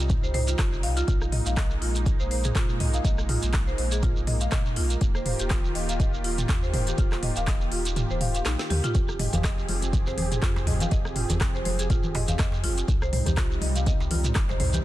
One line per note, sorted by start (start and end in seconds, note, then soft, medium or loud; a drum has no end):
0.00 0.18 C2 medium
0.00 1.04 C3 medium
0.00 1.04 G3 medium
0.00 4.97 D#4 medium
0.09 kick loud
0.09 closed hi-hat soft
0.09 mid tom loud
0.09 shekere medium
0.23 0.55 C2 medium
0.23 0.33 C5 medium
0.23 shekere soft
0.34 0.47 C5 loud
0.34 mid tom medium
0.34 open hi-hat medium
0.48 0.54 F4 medium
0.48 closed hi-hat medium
0.48 shekere medium
0.58 0.85 G1 medium
0.58 0.66 F4 medium
0.58 kick loud
0.58 cross-stick loud
0.58 clap medium
0.58 closed hi-hat soft
0.58 shekere medium
0.73 shekere soft
0.83 1.03 C2 medium
0.83 0.96 F5 loud
0.83 open hi-hat medium
0.97 1.06 F4 loud
0.97 closed hi-hat medium
0.97 shekere medium
1.07 1.41 A#1 loud
1.07 4.97 G#3 medium
1.07 8.91 A#3 medium
1.07 1.20 F4 medium
1.07 kick loud
1.07 closed hi-hat soft
1.07 shekere medium
1.21 cross-stick medium
1.21 shekere soft
1.32 1.40 D#5 medium
1.32 mid tom medium
1.32 open hi-hat medium
1.46 1.77 A#1 loud
1.46 1.56 F5 medium
1.46 closed hi-hat medium
1.46 shekere medium
1.57 1.69 D#5 loud
1.57 kick loud
1.57 cross-stick loud
1.57 clap loud
1.57 closed hi-hat soft
1.57 shekere medium
1.70 shekere soft
1.81 2.15 A#1 loud
1.81 1.94 F4 medium
1.81 open hi-hat medium
1.95 closed hi-hat medium
1.95 shekere medium
2.06 kick loud
2.06 closed hi-hat soft
2.06 shekere medium
2.20 2.51 A#1 medium
2.20 2.30 C5 medium
2.20 shekere soft
2.31 2.43 C5 medium
2.31 open hi-hat medium
2.44 2.55 G#4 medium
2.44 closed hi-hat medium
2.44 mid tom medium
2.44 shekere medium
2.55 2.81 A#2 medium
2.55 2.68 F4 medium
2.55 kick loud
2.55 cross-stick loud
2.55 clap loud
2.55 closed hi-hat soft
2.55 shekere medium
2.69 shekere soft
2.80 3.00 A#1 loud
2.80 2.87 D#5 medium
2.80 mid tom medium
2.80 open hi-hat medium
2.94 3.04 F5 medium
2.94 closed hi-hat medium
2.94 shekere medium
3.05 3.38 A#1 loud
3.05 3.17 D#5 loud
3.05 kick loud
3.05 closed hi-hat soft
3.05 shekere medium
3.18 cross-stick medium
3.18 shekere soft
3.29 3.41 F4 medium
3.29 mid tom medium
3.29 open hi-hat medium
3.42 3.74 A#1 loud
3.42 closed hi-hat medium
3.42 shekere medium
3.53 kick loud
3.53 cross-stick loud
3.53 clap loud
3.53 closed hi-hat soft
3.53 shekere medium
3.67 3.77 C5 medium
3.67 shekere soft
3.78 4.12 A#1 medium
3.78 3.91 C5 medium
3.78 open hi-hat medium
3.91 4.02 G#4 medium
3.91 closed hi-hat medium
3.91 shekere medium
4.02 4.15 F4 medium
4.02 kick loud
4.02 closed hi-hat soft
4.02 mid tom loud
4.02 shekere medium
4.17 4.48 A#1 medium
4.17 shekere soft
4.27 4.35 D#5 medium
4.27 mid tom medium
4.27 open hi-hat medium
4.41 4.51 F5 medium
4.41 closed hi-hat medium
4.41 shekere medium
4.52 4.78 A#2 medium
4.52 4.64 D#5 loud
4.52 kick loud
4.52 cross-stick loud
4.52 clap loud
4.52 closed hi-hat soft
4.52 shekere medium
4.66 shekere soft
4.76 4.96 A#1 loud
4.76 4.89 F4 medium
4.76 open hi-hat medium
4.90 closed hi-hat medium
4.90 shekere medium
5.01 5.35 D#1 loud
5.01 8.91 D#3 medium
5.01 8.91 F4 medium
5.01 12.84 G4 medium
5.01 kick loud
5.01 closed hi-hat soft
5.01 shekere medium
5.15 5.25 C5 medium
5.15 cross-stick medium
5.15 shekere soft
5.26 5.38 C5 medium
5.26 mid tom medium
5.26 open hi-hat medium
5.39 5.71 D#1 loud
5.39 5.50 G4 medium
5.39 closed hi-hat medium
5.39 shekere medium
5.50 5.63 F4 medium
5.50 kick loud
5.50 cross-stick loud
5.50 clap loud
5.50 closed hi-hat soft
5.50 shekere medium
5.65 shekere soft
5.75 6.08 D#1 loud
5.75 5.83 D#5 medium
5.75 open hi-hat medium
5.89 5.99 F5 medium
5.89 closed hi-hat medium
5.89 shekere medium
6.00 6.12 D#5 loud
6.00 kick loud
6.00 closed hi-hat soft
6.00 shekere medium
6.13 6.45 D#1 medium
6.13 shekere soft
6.24 6.37 F4 medium
6.24 open hi-hat medium
6.38 closed hi-hat medium
6.38 mid tom medium
6.38 shekere medium
6.49 6.75 D#2 medium
6.49 kick loud
6.49 cross-stick loud
6.49 clap loud
6.49 closed hi-hat soft
6.49 shekere medium
6.63 6.72 C5 medium
6.63 shekere soft
6.73 6.93 D#1 loud
6.73 6.86 C5 medium
6.73 mid tom medium
6.73 open hi-hat medium
6.87 6.98 G4 medium
6.87 closed hi-hat medium
6.87 shekere medium
6.98 7.32 D#1 loud
6.98 7.11 F4 medium
6.98 kick loud
6.98 closed hi-hat soft
6.98 shekere medium
7.12 cross-stick medium
7.12 clap soft
7.12 shekere soft
7.23 7.30 D#5 medium
7.23 mid tom medium
7.23 open hi-hat medium
7.36 7.68 D#1 loud
7.36 7.47 F5 medium
7.36 closed hi-hat medium
7.36 shekere medium
7.47 7.60 D#5 medium
7.47 kick loud
7.47 cross-stick loud
7.47 clap loud
7.47 closed hi-hat soft
7.47 shekere medium
7.61 shekere soft
7.72 8.05 D#1 medium
7.72 7.84 F4 medium
7.72 open hi-hat medium
7.85 closed hi-hat medium
7.85 shekere medium
7.96 closed hi-hat soft
7.96 mid tom medium
7.96 shekere medium
8.10 8.42 D#1 medium
8.10 8.20 C5 medium
8.10 shekere soft
8.21 8.33 F5 medium
8.21 mid tom medium
8.21 open hi-hat medium
8.35 8.45 F5 medium
8.35 closed hi-hat medium
8.35 shekere medium
8.45 8.56 A#1 loud
8.45 8.58 D#4 loud
8.45 cross-stick loud
8.45 snare medium
8.45 clap loud
8.45 closed hi-hat soft
8.45 shekere medium
8.59 snare medium
8.59 shekere soft
8.70 8.81 D#2 medium
8.70 8.78 G4 loud
8.70 open hi-hat loud
8.70 mid tom medium
8.84 8.94 F4 loud
8.84 closed hi-hat medium
8.84 mid tom medium
8.84 shekere medium
8.95 9.28 F1 loud
8.95 12.84 F3 medium
8.95 12.84 C4 medium
8.95 9.07 F4 medium
8.95 12.84 G#4 medium
8.95 kick loud
8.95 closed hi-hat soft
8.95 djembe tone medium
8.95 shekere medium
9.09 cross-stick medium
9.09 shekere soft
9.19 9.27 D#5 medium
9.19 mid tom medium
9.19 open hi-hat loud
9.19 high conga medium
9.33 9.65 F1 loud
9.33 9.44 F5 medium
9.33 closed hi-hat medium
9.33 low conga loud
9.33 djembe bass loud
9.33 shekere medium
9.44 9.56 D#5 loud
9.44 kick loud
9.44 cross-stick loud
9.44 clap loud
9.44 closed hi-hat soft
9.44 shekere medium
9.59 shekere soft
9.69 10.02 F1 medium
9.69 9.81 F4 medium
9.69 open hi-hat medium
9.69 high conga medium
9.82 closed hi-hat medium
9.82 high conga medium
9.82 shekere medium
9.93 kick loud
9.93 closed hi-hat soft
9.93 low conga loud
9.93 shekere medium
10.07 10.38 F1 medium
10.07 10.17 C5 medium
10.07 djembe slap medium
10.07 shekere soft
10.17 10.30 C5 medium
10.17 open hi-hat loud
10.17 djembe tone medium
10.17 high conga medium
10.17 low conga medium
10.32 10.42 G#4 medium
10.32 closed hi-hat medium
10.32 mid tom medium
10.32 shekere medium
10.42 10.68 F2 medium
10.42 10.55 F4 medium
10.42 kick loud
10.42 cross-stick loud
10.42 clap loud
10.42 closed hi-hat soft
10.42 shekere medium
10.56 djembe slap loud
10.56 high conga medium
10.56 shekere soft
10.67 10.87 F1 loud
10.67 10.74 D#5 medium
10.67 mid tom medium
10.67 open hi-hat loud
10.67 djembe bass medium
10.80 10.91 F5 medium
10.80 closed hi-hat medium
10.80 low conga loud
10.80 shekere medium
10.91 11.25 F1 loud
10.91 11.04 D#5 loud
10.91 kick loud
10.91 closed hi-hat soft
10.91 djembe tone medium
10.91 shekere medium
11.05 cross-stick medium
11.05 shekere soft
11.16 11.29 F4 medium
11.16 mid tom medium
11.16 open hi-hat loud
11.30 11.61 F1 loud
11.30 closed hi-hat medium
11.30 djembe bass medium
11.30 low conga loud
11.30 shekere medium
11.41 kick loud
11.41 cross-stick loud
11.41 clap loud
11.41 closed hi-hat soft
11.41 shekere medium
11.55 11.64 C5 medium
11.55 shekere soft
11.65 11.99 F1 medium
11.65 11.78 C5 medium
11.65 open hi-hat loud
11.65 high conga loud
11.79 11.89 G#4 medium
11.79 closed hi-hat medium
11.79 shekere medium
11.90 12.02 F4 medium
11.90 kick loud
11.90 closed hi-hat soft
11.90 mid tom loud
11.90 shekere medium
12.03 12.35 F1 medium
12.03 low conga loud
12.03 shekere soft
12.15 12.22 D#5 medium
12.15 mid tom medium
12.15 open hi-hat medium
12.15 djembe slap loud
12.28 12.39 F5 medium
12.28 closed hi-hat medium
12.28 djembe tone medium
12.28 low conga medium
12.28 shekere medium
12.39 12.65 F2 medium
12.39 12.51 D#5 loud
12.39 kick loud
12.39 cross-stick loud
12.39 clap loud
12.39 closed hi-hat soft
12.39 djembe bass loud
12.39 shekere medium
12.52 djembe slap loud
12.52 shekere soft
12.63 12.83 F1 loud
12.63 12.76 F4 medium
12.63 open hi-hat loud
12.63 high conga medium
12.63 djembe tone medium
12.78 closed hi-hat medium
12.78 shekere medium
12.88 13.22 C2 loud
12.88 14.85 C3 medium
12.88 14.85 G3 medium
12.88 14.85 D#4 medium
12.88 kick loud
12.88 closed hi-hat soft
12.88 djembe tone medium
12.88 shekere medium
13.02 13.12 C5 medium
13.02 cross-stick medium
13.02 shekere soft
13.13 13.25 C5 medium
13.13 mid tom medium
13.13 open hi-hat medium
13.13 high conga medium
13.26 13.58 C2 loud
13.26 13.37 G4 medium
13.26 closed hi-hat medium
13.26 djembe bass loud
13.26 low conga loud
13.26 shekere medium
13.37 13.50 F4 medium
13.37 kick loud
13.37 cross-stick loud
13.37 clap loud
13.37 closed hi-hat soft
13.37 shekere medium
13.52 shekere soft
13.61 13.95 C2 medium
13.61 13.69 D#5 medium
13.61 open hi-hat medium
13.61 high conga loud
13.75 13.86 F5 medium
13.75 closed hi-hat medium
13.75 high conga medium
13.75 shekere medium
13.86 13.99 D#5 loud
13.86 kick loud
13.86 closed hi-hat soft
13.86 low conga medium
13.86 shekere medium
14.00 14.32 C2 medium
14.00 djembe slap medium
14.00 shekere soft
14.11 14.24 F4 medium
14.11 open hi-hat medium
14.11 djembe tone medium
14.11 high conga medium
14.11 low conga loud
14.24 closed hi-hat medium
14.24 mid tom medium
14.24 shekere medium
14.35 14.62 G1 medium
14.35 kick loud
14.35 cross-stick loud
14.35 clap medium
14.35 closed hi-hat soft
14.35 shekere medium
14.49 14.59 C5 medium
14.49 djembe slap loud
14.49 high conga medium
14.49 shekere soft
14.60 14.80 C2 loud
14.60 14.73 C5 medium
14.60 mid tom medium
14.60 open hi-hat loud
14.60 djembe bass medium
14.73 14.84 G4 medium
14.73 closed hi-hat medium
14.73 low conga loud
14.73 shekere medium